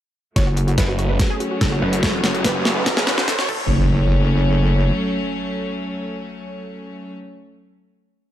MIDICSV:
0, 0, Header, 1, 8, 480
1, 0, Start_track
1, 0, Key_signature, 3, "minor"
1, 0, Tempo, 416667
1, 417, Time_signature, 4, 2, 24, 8
1, 9582, End_track
2, 0, Start_track
2, 0, Title_t, "Synth pluck"
2, 0, Program_c, 0, 84
2, 416, Note_on_c, 0, 73, 99
2, 493, Note_off_c, 0, 73, 0
2, 542, Note_on_c, 0, 66, 63
2, 612, Note_off_c, 0, 66, 0
2, 656, Note_on_c, 0, 66, 60
2, 733, Note_off_c, 0, 66, 0
2, 782, Note_on_c, 0, 66, 66
2, 852, Note_off_c, 0, 66, 0
2, 897, Note_on_c, 0, 71, 104
2, 973, Note_off_c, 0, 71, 0
2, 1022, Note_on_c, 0, 66, 61
2, 1092, Note_off_c, 0, 66, 0
2, 1137, Note_on_c, 0, 66, 65
2, 1213, Note_off_c, 0, 66, 0
2, 1261, Note_on_c, 0, 71, 85
2, 1332, Note_off_c, 0, 71, 0
2, 1376, Note_on_c, 0, 66, 63
2, 1453, Note_off_c, 0, 66, 0
2, 1501, Note_on_c, 0, 68, 99
2, 1572, Note_off_c, 0, 68, 0
2, 1616, Note_on_c, 0, 66, 61
2, 1693, Note_off_c, 0, 66, 0
2, 1741, Note_on_c, 0, 66, 66
2, 1812, Note_off_c, 0, 66, 0
2, 1856, Note_on_c, 0, 69, 87
2, 1933, Note_off_c, 0, 69, 0
2, 1981, Note_on_c, 0, 66, 64
2, 2052, Note_off_c, 0, 66, 0
2, 2096, Note_on_c, 0, 71, 85
2, 2173, Note_off_c, 0, 71, 0
2, 2221, Note_on_c, 0, 66, 61
2, 2292, Note_off_c, 0, 66, 0
2, 2336, Note_on_c, 0, 73, 104
2, 2413, Note_off_c, 0, 73, 0
2, 2461, Note_on_c, 0, 66, 64
2, 2532, Note_off_c, 0, 66, 0
2, 2576, Note_on_c, 0, 66, 67
2, 2653, Note_off_c, 0, 66, 0
2, 2700, Note_on_c, 0, 66, 70
2, 2771, Note_off_c, 0, 66, 0
2, 2816, Note_on_c, 0, 71, 104
2, 2893, Note_off_c, 0, 71, 0
2, 2941, Note_on_c, 0, 66, 62
2, 3012, Note_off_c, 0, 66, 0
2, 3056, Note_on_c, 0, 66, 67
2, 3133, Note_off_c, 0, 66, 0
2, 3181, Note_on_c, 0, 71, 91
2, 3252, Note_off_c, 0, 71, 0
2, 3297, Note_on_c, 0, 66, 64
2, 3373, Note_off_c, 0, 66, 0
2, 3421, Note_on_c, 0, 68, 92
2, 3492, Note_off_c, 0, 68, 0
2, 3537, Note_on_c, 0, 66, 65
2, 3613, Note_off_c, 0, 66, 0
2, 3663, Note_on_c, 0, 66, 66
2, 3732, Note_off_c, 0, 66, 0
2, 3777, Note_on_c, 0, 69, 86
2, 3853, Note_off_c, 0, 69, 0
2, 3903, Note_on_c, 0, 66, 66
2, 3972, Note_off_c, 0, 66, 0
2, 4017, Note_on_c, 0, 69, 90
2, 8234, Note_off_c, 0, 69, 0
2, 9582, End_track
3, 0, Start_track
3, 0, Title_t, "String section"
3, 0, Program_c, 1, 48
3, 417, Note_on_c, 1, 54, 82
3, 418, Note_on_c, 1, 57, 75
3, 418, Note_on_c, 1, 61, 88
3, 3981, Note_off_c, 1, 54, 0
3, 3981, Note_off_c, 1, 57, 0
3, 3981, Note_off_c, 1, 61, 0
3, 4017, Note_on_c, 1, 57, 76
3, 8233, Note_off_c, 1, 57, 0
3, 9582, End_track
4, 0, Start_track
4, 0, Title_t, "Detuned saw bass"
4, 0, Program_c, 2, 39
4, 897, Note_on_c, 2, 30, 93
4, 1358, Note_off_c, 2, 30, 0
4, 2097, Note_on_c, 2, 30, 97
4, 2558, Note_off_c, 2, 30, 0
4, 2577, Note_on_c, 2, 30, 101
4, 3518, Note_off_c, 2, 30, 0
4, 3537, Note_on_c, 2, 30, 98
4, 3998, Note_off_c, 2, 30, 0
4, 9582, End_track
5, 0, Start_track
5, 0, Title_t, "Wobble bass"
5, 0, Program_c, 3, 39
5, 416, Note_on_c, 3, 30, 95
5, 878, Note_off_c, 3, 30, 0
5, 1856, Note_on_c, 3, 30, 91
5, 2078, Note_off_c, 3, 30, 0
5, 4017, Note_on_c, 3, 30, 97
5, 5651, Note_off_c, 3, 30, 0
5, 9582, End_track
6, 0, Start_track
6, 0, Title_t, "Impact"
6, 0, Program_c, 4, 103
6, 4017, Note_on_c, 4, 60, 69
6, 8280, Note_off_c, 4, 60, 0
6, 9582, End_track
7, 0, Start_track
7, 0, Title_t, "Riser"
7, 0, Program_c, 5, 103
7, 417, Note_on_c, 5, 60, 82
7, 4017, Note_off_c, 5, 60, 0
7, 9582, End_track
8, 0, Start_track
8, 0, Title_t, "Drums"
8, 416, Note_on_c, 9, 36, 95
8, 417, Note_on_c, 9, 38, 47
8, 417, Note_on_c, 9, 42, 84
8, 532, Note_off_c, 9, 36, 0
8, 532, Note_off_c, 9, 38, 0
8, 532, Note_off_c, 9, 42, 0
8, 657, Note_on_c, 9, 42, 57
8, 772, Note_off_c, 9, 42, 0
8, 782, Note_on_c, 9, 42, 39
8, 896, Note_off_c, 9, 42, 0
8, 896, Note_on_c, 9, 36, 90
8, 896, Note_on_c, 9, 38, 53
8, 896, Note_on_c, 9, 42, 79
8, 1012, Note_off_c, 9, 36, 0
8, 1012, Note_off_c, 9, 38, 0
8, 1012, Note_off_c, 9, 42, 0
8, 1136, Note_on_c, 9, 42, 55
8, 1252, Note_off_c, 9, 42, 0
8, 1376, Note_on_c, 9, 36, 98
8, 1377, Note_on_c, 9, 38, 56
8, 1377, Note_on_c, 9, 42, 79
8, 1491, Note_off_c, 9, 36, 0
8, 1492, Note_off_c, 9, 38, 0
8, 1492, Note_off_c, 9, 42, 0
8, 1617, Note_on_c, 9, 42, 51
8, 1732, Note_off_c, 9, 42, 0
8, 1856, Note_on_c, 9, 36, 93
8, 1857, Note_on_c, 9, 38, 64
8, 1857, Note_on_c, 9, 42, 81
8, 1972, Note_off_c, 9, 36, 0
8, 1972, Note_off_c, 9, 38, 0
8, 1972, Note_off_c, 9, 42, 0
8, 2222, Note_on_c, 9, 42, 66
8, 2336, Note_on_c, 9, 36, 95
8, 2337, Note_off_c, 9, 42, 0
8, 2337, Note_on_c, 9, 38, 75
8, 2337, Note_on_c, 9, 42, 76
8, 2452, Note_off_c, 9, 36, 0
8, 2452, Note_off_c, 9, 38, 0
8, 2452, Note_off_c, 9, 42, 0
8, 2577, Note_on_c, 9, 38, 83
8, 2577, Note_on_c, 9, 42, 56
8, 2692, Note_off_c, 9, 38, 0
8, 2692, Note_off_c, 9, 42, 0
8, 2702, Note_on_c, 9, 42, 37
8, 2816, Note_on_c, 9, 36, 94
8, 2817, Note_off_c, 9, 42, 0
8, 2817, Note_on_c, 9, 38, 79
8, 2817, Note_on_c, 9, 42, 82
8, 2932, Note_off_c, 9, 36, 0
8, 2932, Note_off_c, 9, 38, 0
8, 2932, Note_off_c, 9, 42, 0
8, 3057, Note_on_c, 9, 38, 83
8, 3057, Note_on_c, 9, 42, 53
8, 3172, Note_off_c, 9, 38, 0
8, 3172, Note_off_c, 9, 42, 0
8, 3296, Note_on_c, 9, 36, 98
8, 3297, Note_on_c, 9, 38, 89
8, 3297, Note_on_c, 9, 42, 77
8, 3412, Note_off_c, 9, 36, 0
8, 3412, Note_off_c, 9, 38, 0
8, 3412, Note_off_c, 9, 42, 0
8, 3422, Note_on_c, 9, 38, 84
8, 3537, Note_off_c, 9, 38, 0
8, 3537, Note_on_c, 9, 38, 94
8, 3537, Note_on_c, 9, 42, 52
8, 3652, Note_off_c, 9, 38, 0
8, 3652, Note_off_c, 9, 42, 0
8, 3662, Note_on_c, 9, 38, 88
8, 3777, Note_off_c, 9, 38, 0
8, 3777, Note_on_c, 9, 36, 98
8, 3777, Note_on_c, 9, 38, 103
8, 3777, Note_on_c, 9, 42, 83
8, 3892, Note_off_c, 9, 36, 0
8, 3892, Note_off_c, 9, 38, 0
8, 3892, Note_off_c, 9, 42, 0
8, 3902, Note_on_c, 9, 38, 88
8, 4017, Note_off_c, 9, 38, 0
8, 4017, Note_on_c, 9, 36, 117
8, 4017, Note_on_c, 9, 49, 89
8, 4132, Note_off_c, 9, 36, 0
8, 4132, Note_off_c, 9, 49, 0
8, 9582, End_track
0, 0, End_of_file